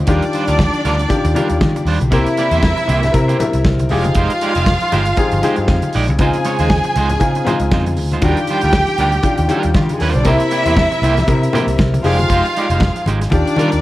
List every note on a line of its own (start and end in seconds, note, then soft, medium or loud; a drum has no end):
0.00 0.11 C#3 medium
0.00 0.11 C4 medium
0.00 0.11 D#4 medium
0.00 0.08 F4 loud
0.00 0.09 G4 medium
0.06 0.19 D#2 loud
0.06 0.95 D#3 loud
0.06 0.23 G3 medium
0.06 1.82 D4 medium
0.06 0.95 D4 medium
0.06 0.23 D4 medium
0.06 0.23 F4 medium
0.06 0.95 F4 medium
0.06 0.95 G4 loud
0.06 0.23 A#4 medium
0.06 1.82 D5 loud
0.06 kick loud
0.06 closed hi-hat medium
0.22 closed hi-hat soft
0.33 0.46 G3 medium
0.33 0.46 D4 medium
0.33 0.46 F4 medium
0.33 0.46 C5 medium
0.33 closed hi-hat medium
0.48 0.68 D2 medium
0.48 0.58 G3 medium
0.48 0.58 D4 medium
0.48 0.58 F4 medium
0.48 0.58 A#4 medium
0.48 closed hi-hat medium
0.59 kick loud
0.59 snare loud
0.59 high conga medium
0.74 muted clean electric guitar stroke medium
0.74 closed hi-hat soft
0.85 1.04 D2 loud
0.85 1.00 G3 medium
0.85 0.99 D4 medium
0.85 0.99 F4 medium
0.85 0.98 A#4 loud
0.85 closed hi-hat medium
0.85 muted conga soft
0.99 muted clean electric guitar stroke medium
0.99 closed hi-hat soft
1.08 1.31 D#3 medium
1.08 1.31 D4 medium
1.08 1.32 F4 medium
1.08 1.32 G4 medium
1.08 muted clean electric guitar stroke soft
1.08 kick loud
1.08 closed hi-hat medium
1.08 muted conga medium
1.24 1.33 D#2 loud
1.24 muted clean electric guitar stroke soft
1.24 closed hi-hat medium
1.34 2.00 D#3 medium
1.34 1.51 G3 medium
1.34 2.01 D4 medium
1.34 1.50 D4 medium
1.34 2.01 F4 medium
1.34 1.50 F4 medium
1.34 2.01 G4 medium
1.34 1.49 A#4 medium
1.34 closed hi-hat medium
1.34 muted conga medium
1.49 1.59 D#2 medium
1.49 muted clean electric guitar stroke medium
1.49 closed hi-hat soft
1.61 1.72 D#3 loud
1.61 muted clean electric guitar stroke soft
1.61 kick loud
1.61 snare loud
1.61 high conga medium
1.76 muted clean electric guitar stroke medium
1.76 closed hi-hat medium
1.76 high conga medium
1.85 1.97 D#2 loud
1.85 2.02 G3 medium
1.85 2.01 D4 medium
1.85 2.00 F4 medium
1.85 2.01 C5 medium
1.85 open hi-hat medium
2.00 2.12 B1 loud
2.00 muted clean electric guitar stroke soft
2.00 closed hi-hat soft
2.00 high conga medium
2.10 2.23 C2 loud
2.10 2.98 C3 medium
2.10 2.27 A#3 medium
2.10 2.98 C4 medium
2.10 3.61 E4 loud
2.10 2.99 E4 medium
2.10 2.27 E4 medium
2.10 2.28 G4 medium
2.10 2.99 A#4 loud
2.10 2.28 C5 medium
2.10 3.61 E5 loud
2.10 kick loud
2.10 closed hi-hat loud
2.26 closed hi-hat soft
2.37 2.50 A#3 medium
2.37 2.50 E4 medium
2.37 2.50 G4 medium
2.37 2.50 D5 medium
2.37 closed hi-hat medium
2.37 muted conga soft
2.51 2.71 E2 medium
2.51 2.62 A#3 medium
2.51 2.62 E4 medium
2.51 2.61 G4 medium
2.51 2.61 C5 medium
2.51 closed hi-hat soft
2.63 kick loud
2.63 snare loud
2.63 high conga medium
2.77 muted clean electric guitar stroke medium
2.77 closed hi-hat soft
2.87 3.08 C2 loud
2.87 3.03 A#3 medium
2.87 3.02 E4 medium
2.87 3.02 G4 medium
2.87 3.01 C5 medium
2.87 closed hi-hat medium
2.87 muted conga medium
3.02 muted clean electric guitar stroke medium
3.02 snare soft
3.02 closed hi-hat soft
3.02 low conga medium
3.12 3.35 C3 medium
3.12 3.33 C3 medium
3.12 3.35 C4 medium
3.12 3.35 E4 medium
3.12 3.36 A#4 loud
3.12 muted clean electric guitar stroke soft
3.12 kick loud
3.12 closed hi-hat medium
3.12 muted conga medium
3.28 3.38 A#3 medium
3.28 3.38 E4 medium
3.28 3.39 G4 medium
3.28 3.39 C5 medium
3.28 closed hi-hat medium
3.38 3.90 C3 medium
3.38 3.90 C4 medium
3.38 3.90 E4 medium
3.38 3.90 A#4 loud
3.38 muted clean electric guitar stroke soft
3.38 closed hi-hat medium
3.38 muted conga medium
3.38 low conga loud
3.53 3.62 C2 medium
3.53 muted clean electric guitar stroke soft
3.53 closed hi-hat soft
3.65 3.92 C2 loud
3.65 muted clean electric guitar stroke soft
3.65 kick loud
3.65 snare loud
3.65 high conga medium
3.79 muted clean electric guitar stroke medium
3.79 closed hi-hat medium
3.79 high conga medium
3.89 4.09 F1 medium
3.89 4.76 F3 medium
3.89 4.06 G#3 medium
3.89 4.77 D#4 medium
3.89 4.06 D#4 medium
3.89 5.90 F4 loud
3.89 4.77 G4 medium
3.89 4.05 G4 medium
3.89 4.77 G#4 medium
3.89 4.06 D5 medium
3.89 5.90 F5 loud
3.89 open hi-hat medium
4.04 muted clean electric guitar stroke soft
4.04 closed hi-hat soft
4.04 high conga medium
4.15 4.26 F1 loud
4.15 4.31 G#3 medium
4.15 4.31 D#4 medium
4.15 4.31 G4 medium
4.15 4.32 C5 medium
4.15 kick loud
4.15 closed hi-hat loud
4.30 closed hi-hat medium
4.41 4.53 G#3 medium
4.41 4.54 D#4 medium
4.41 4.54 G4 medium
4.41 4.54 D5 medium
4.41 closed hi-hat medium
4.55 4.75 F1 medium
4.55 4.65 G#3 medium
4.55 4.65 D#4 medium
4.55 4.65 G4 medium
4.55 4.65 C5 medium
4.55 closed hi-hat medium
4.66 kick loud
4.66 snare loud
4.66 high conga medium
4.80 muted clean electric guitar stroke medium
4.80 closed hi-hat soft
4.92 5.12 G1 medium
4.92 5.07 G#3 medium
4.92 5.07 D#4 medium
4.92 5.07 G4 medium
4.92 5.06 C5 loud
4.92 closed hi-hat medium
4.92 muted conga medium
5.05 muted clean electric guitar stroke medium
5.05 closed hi-hat soft
5.17 5.39 F3 medium
5.17 5.39 D#4 medium
5.17 5.39 G4 medium
5.17 5.39 G#4 medium
5.17 muted clean electric guitar stroke soft
5.17 kick loud
5.17 closed hi-hat medium
5.17 muted conga medium
5.32 5.41 G1 medium
5.32 muted clean electric guitar stroke soft
5.32 closed hi-hat medium
5.42 6.08 F3 medium
5.42 5.58 G#3 medium
5.42 6.08 D#4 medium
5.42 5.57 D#4 medium
5.42 6.08 G4 medium
5.42 5.57 G4 medium
5.42 6.09 G#4 loud
5.42 5.57 C5 medium
5.42 closed hi-hat medium
5.42 muted conga medium
5.56 5.66 G2 medium
5.56 muted clean electric guitar stroke soft
5.56 closed hi-hat soft
5.68 5.79 F2 loud
5.68 muted clean electric guitar stroke soft
5.68 kick loud
5.68 snare loud
5.68 high conga medium
5.82 muted clean electric guitar stroke soft
5.82 closed hi-hat soft
5.82 high conga medium
5.93 6.10 A#1 loud
5.93 6.09 G#3 medium
5.93 6.09 D#4 loud
5.93 6.09 G4 medium
5.93 6.09 D5 medium
5.93 open hi-hat medium
6.08 6.17 C2 medium
6.08 muted clean electric guitar stroke soft
6.08 closed hi-hat soft
6.08 high conga medium
6.19 6.30 C#2 loud
6.19 7.05 C#3 medium
6.19 6.35 G#3 medium
6.19 7.06 C4 medium
6.19 7.06 D#4 medium
6.19 6.35 D#4 medium
6.19 7.06 F4 medium
6.19 6.35 F4 loud
6.19 7.93 G#4 loud
6.19 6.35 C5 medium
6.19 7.93 G#5 loud
6.19 kick loud
6.19 closed hi-hat medium
6.33 closed hi-hat medium
6.45 6.57 G#3 medium
6.45 6.57 D#4 medium
6.45 6.57 F4 medium
6.45 6.57 C#5 medium
6.45 closed hi-hat medium
6.45 muted conga soft
6.59 6.78 D#2 medium
6.59 6.69 G#3 medium
6.59 6.69 D#4 medium
6.59 6.69 F4 medium
6.59 6.69 C5 medium
6.59 closed hi-hat medium
6.70 kick loud
6.70 snare loud
6.70 high conga medium
6.84 muted clean electric guitar stroke medium
6.84 closed hi-hat soft
6.96 7.15 C#2 loud
6.96 7.11 G#3 medium
6.96 7.10 D#4 medium
6.96 7.10 F4 medium
6.96 7.10 C5 medium
6.96 closed hi-hat medium
6.96 muted conga medium
7.09 muted clean electric guitar stroke medium
7.09 closed hi-hat soft
7.09 low conga medium
7.19 7.42 C#3 medium
7.19 7.40 C#3 loud
7.19 7.42 C4 medium
7.19 7.42 D#4 medium
7.19 7.43 F4 medium
7.19 muted clean electric guitar stroke soft
7.19 kick loud
7.19 closed hi-hat medium
7.19 muted conga medium
7.35 muted clean electric guitar stroke medium
7.35 closed hi-hat medium
7.44 8.11 C#3 medium
7.44 7.61 G#3 medium
7.44 8.11 C4 medium
7.44 8.11 D#4 medium
7.44 7.61 D#4 medium
7.44 8.11 F4 loud
7.44 7.60 F4 medium
7.44 7.60 C5 medium
7.44 closed hi-hat medium
7.44 muted conga medium
7.44 low conga loud
7.60 7.69 C#2 medium
7.60 muted clean electric guitar stroke medium
7.60 closed hi-hat soft
7.71 7.98 F2 medium
7.71 7.87 G#3 medium
7.71 7.87 D#4 medium
7.71 7.87 F4 medium
7.71 7.86 C5 medium
7.71 kick loud
7.71 snare loud
7.71 high conga medium
7.86 muted clean electric guitar stroke medium
7.86 closed hi-hat medium
7.86 high conga medium
7.97 8.17 D2 loud
7.97 muted clean electric guitar stroke soft
7.97 open hi-hat medium
8.12 8.22 G#3 soft
8.12 8.22 D#4 medium
8.12 8.22 F4 medium
8.12 8.22 C5 medium
8.12 closed hi-hat soft
8.12 high conga medium
8.21 8.33 D#2 loud
8.21 9.08 D#3 medium
8.21 8.38 G3 medium
8.21 9.09 D4 medium
8.21 8.39 D4 medium
8.21 9.09 F4 medium
8.21 8.39 F4 medium
8.21 8.29 F#4 medium
8.21 9.68 G4 loud
8.21 8.39 A#4 medium
8.21 9.68 G5 loud
8.21 kick loud
8.21 closed hi-hat loud
8.29 9.12 G4 loud
8.37 closed hi-hat soft
8.47 8.61 G3 medium
8.47 8.61 D4 medium
8.47 8.61 F4 medium
8.47 8.61 C5 medium
8.47 closed hi-hat medium
8.47 muted conga soft
8.61 8.82 D2 medium
8.61 8.73 G3 medium
8.61 8.73 D4 medium
8.61 8.73 F4 medium
8.61 8.72 A#4 medium
8.61 closed hi-hat medium
8.73 kick loud
8.73 snare loud
8.73 high conga medium
8.87 muted clean electric guitar stroke soft
8.87 closed hi-hat soft
8.98 9.18 D2 loud
8.98 9.14 G3 medium
8.98 9.13 D4 medium
8.98 9.13 F4 loud
8.98 9.13 A#4 loud
8.98 closed hi-hat medium
8.98 muted conga medium
9.12 muted clean electric guitar stroke soft
9.12 closed hi-hat soft
9.23 9.45 D#3 medium
9.23 9.46 D4 medium
9.23 9.46 F4 medium
9.23 9.46 G4 medium
9.23 muted clean electric guitar stroke soft
9.23 kick loud
9.23 closed hi-hat medium
9.23 muted conga medium
9.38 9.47 D#2 medium
9.38 muted clean electric guitar stroke soft
9.38 closed hi-hat medium
9.48 10.14 D#3 medium
9.48 9.71 G3 medium
9.48 10.15 D4 medium
9.48 9.65 D4 medium
9.48 10.15 F4 medium
9.48 9.64 F4 medium
9.48 10.15 G4 loud
9.48 9.64 A#4 loud
9.48 closed hi-hat medium
9.48 muted conga medium
9.63 9.73 D#2 medium
9.63 muted clean electric guitar stroke medium
9.63 closed hi-hat soft
9.74 9.85 D#3 loud
9.74 9.83 F4 medium
9.74 muted clean electric guitar stroke soft
9.74 kick loud
9.74 snare loud
9.74 high conga medium
9.83 9.92 G3 medium
9.83 9.92 G4 medium
9.89 10.01 G#3 medium
9.89 10.01 G#4 medium
9.89 muted clean electric guitar stroke medium
9.89 closed hi-hat medium
9.89 high conga medium
10.00 10.12 D#2 medium
10.00 10.21 G3 medium
10.00 10.09 A#3 medium
10.00 10.15 D4 medium
10.00 10.15 F4 loud
10.00 10.09 A#4 medium
10.00 10.15 C5 loud
10.00 open hi-hat medium
10.09 10.17 C4 medium
10.09 10.18 C5 medium
10.14 10.23 B1 loud
10.14 10.26 D4 medium
10.14 10.26 D5 medium
10.14 muted clean electric guitar stroke soft
10.14 closed hi-hat soft
10.14 high conga medium
10.24 10.36 C2 loud
10.24 11.11 C3 loud
10.24 10.41 A#3 medium
10.24 11.12 C4 medium
10.24 10.32 D#4 medium
10.24 11.75 E4 loud
10.24 10.41 E4 medium
10.24 10.41 G4 medium
10.24 11.12 A#4 loud
10.24 10.42 C5 loud
10.24 11.75 E5 loud
10.24 kick loud
10.24 closed hi-hat medium
10.31 11.15 E4 medium
10.40 closed hi-hat soft
10.51 10.63 A#3 medium
10.51 10.64 E4 medium
10.51 10.64 G4 medium
10.51 10.64 D5 medium
10.51 closed hi-hat medium
10.66 10.85 E2 medium
10.66 10.76 A#3 medium
10.66 10.76 E4 medium
10.66 10.76 G4 medium
10.66 10.75 C5 medium
10.66 closed hi-hat medium
10.77 kick loud
10.77 snare loud
10.77 high conga medium
10.91 muted clean electric guitar stroke soft
10.91 closed hi-hat medium
11.02 11.21 C2 medium
11.02 11.18 A#3 medium
11.02 11.16 E4 medium
11.02 11.16 G4 medium
11.02 11.16 C5 loud
11.02 closed hi-hat medium
11.02 muted conga medium
11.17 muted clean electric guitar stroke soft
11.17 snare soft
11.17 closed hi-hat soft
11.17 low conga medium
11.26 11.49 C3 medium
11.26 11.47 C3 loud
11.26 11.49 C4 medium
11.26 11.50 E4 medium
11.26 11.50 A#4 loud
11.26 muted clean electric guitar stroke soft
11.26 kick loud
11.26 closed hi-hat medium
11.26 muted conga medium
11.42 muted clean electric guitar stroke soft
11.42 closed hi-hat soft
11.53 12.04 C3 medium
11.53 11.69 A#3 medium
11.53 12.04 C4 medium
11.53 11.68 E4 medium
11.53 12.05 E4 medium
11.53 11.68 G4 loud
11.53 12.05 A#4 medium
11.53 11.67 C5 loud
11.53 closed hi-hat medium
11.53 muted conga medium
11.53 low conga loud
11.67 11.76 C2 medium
11.67 muted clean electric guitar stroke medium
11.67 closed hi-hat soft
11.78 11.98 C2 loud
11.78 muted clean electric guitar stroke soft
11.78 kick loud
11.78 snare loud
11.78 high conga medium
11.94 muted clean electric guitar stroke medium
11.94 closed hi-hat medium
11.94 high conga medium
12.02 12.23 F1 loud
12.02 12.90 F3 medium
12.02 12.19 G#3 medium
12.02 12.91 D#4 medium
12.02 12.19 D#4 medium
12.02 13.03 F4 loud
12.02 12.91 G4 medium
12.02 12.19 G4 medium
12.02 12.91 G#4 medium
12.02 12.19 D5 medium
12.02 13.03 F5 loud
12.02 open hi-hat medium
12.18 muted clean electric guitar stroke soft
12.18 closed hi-hat soft
12.18 high conga medium
12.30 12.40 F1 loud
12.30 12.45 G#3 medium
12.30 12.46 D#4 medium
12.30 12.46 G4 medium
12.30 12.46 C5 medium
12.30 kick loud
12.30 closed hi-hat medium
12.45 closed hi-hat medium
12.57 12.68 G#3 medium
12.57 12.68 D#4 medium
12.57 12.68 G4 medium
12.57 12.69 D5 medium
12.57 closed hi-hat medium
12.70 12.89 F1 loud
12.70 12.80 G#3 medium
12.70 12.80 D#4 medium
12.70 12.80 G4 medium
12.70 12.80 C5 medium
12.70 closed hi-hat medium
12.80 kick loud
12.80 snare loud
12.80 high conga medium
12.96 muted clean electric guitar stroke soft
12.96 closed hi-hat soft
13.06 13.25 G#1 loud
13.06 13.22 G#3 medium
13.06 13.21 D#4 medium
13.06 13.21 G4 medium
13.06 13.20 C5 medium
13.06 closed hi-hat medium
13.06 muted conga medium
13.21 muted clean electric guitar stroke medium
13.21 snare soft
13.21 closed hi-hat soft
13.30 13.42 D#2 loud
13.30 13.53 D#3 medium
13.30 13.81 D4 medium
13.30 13.53 D4 medium
13.30 13.53 F4 medium
13.30 13.54 G4 medium
13.30 13.81 D5 loud
13.30 muted clean electric guitar stroke soft
13.30 kick loud
13.30 closed hi-hat medium
13.30 muted conga medium
13.46 muted clean electric guitar stroke soft
13.46 closed hi-hat medium
13.56 13.81 D#3 medium
13.56 13.68 D#3 loud
13.56 13.72 G3 medium
13.56 13.81 D4 medium
13.56 13.71 D4 medium
13.56 13.81 F4 medium
13.56 13.72 F4 medium
13.56 13.81 A#4 loud
13.56 13.71 A#4 loud
13.56 closed hi-hat medium
13.56 muted conga medium
13.72 13.81 D#2 medium
13.72 muted clean electric guitar stroke medium
13.72 closed hi-hat soft